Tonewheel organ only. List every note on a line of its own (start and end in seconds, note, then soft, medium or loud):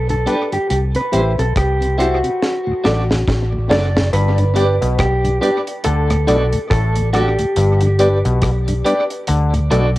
0.09 0.16 G2 medium
0.09 0.16 D3 medium
0.26 0.36 G3 medium
0.26 0.36 B3 medium
0.26 0.36 D4 medium
0.52 0.58 G2 medium
0.52 0.58 D3 medium
0.95 1.01 C3 medium
1.12 1.21 G3 medium
1.12 1.22 C4 medium
1.12 1.22 E4 medium
1.38 1.44 C3 medium
1.81 1.87 C3 medium
1.98 2.07 G3 medium
1.98 2.07 C4 medium
1.98 2.08 E4 medium
2.23 2.30 C3 medium
2.67 2.73 D2 medium
2.67 2.73 A2 medium
2.84 2.93 F#3 medium
2.84 2.93 A3 medium
2.84 2.94 D4 medium
3.10 3.16 D2 medium
3.10 3.16 A2 medium
3.53 3.59 D2 medium
3.53 3.59 A2 medium
3.70 3.79 F#3 medium
3.70 3.79 A3 medium
3.70 3.79 D4 medium
3.96 4.02 D2 soft
3.96 4.02 A2 medium
4.38 4.45 G2 medium
4.38 4.45 D3 medium
4.55 4.65 G3 medium
4.55 4.65 B3 medium
4.55 4.65 D4 medium
5.24 5.31 G2 medium
5.24 5.31 D3 medium
5.41 5.51 G3 medium
5.41 5.51 B3 medium
5.41 5.51 D4 medium
6.10 6.16 D2 medium
6.10 6.16 A2 medium
6.27 6.36 F#3 medium
6.27 6.37 A3 medium
6.27 6.37 D4 medium
6.53 6.59 D2 medium
6.53 6.59 A2 medium
6.96 7.02 D2 medium
6.96 7.02 A2 medium
7.13 7.22 F#3 medium
7.13 7.23 A3 medium
7.13 7.23 D4 medium
7.39 7.45 D2 medium
7.39 7.45 A2 medium
7.82 7.88 G2 medium
7.82 7.88 D3 medium
7.99 8.08 G3 medium
7.99 8.08 B3 medium
7.99 8.09 D4 medium
8.68 8.74 G2 medium
8.68 8.74 D3 medium
8.85 8.94 G3 medium
8.85 8.94 B3 medium
8.85 8.95 D4 medium
9.54 9.60 D2 medium
9.54 9.60 A2 medium
9.71 9.80 F#3 medium
9.71 9.80 A3 medium
9.71 9.80 D4 medium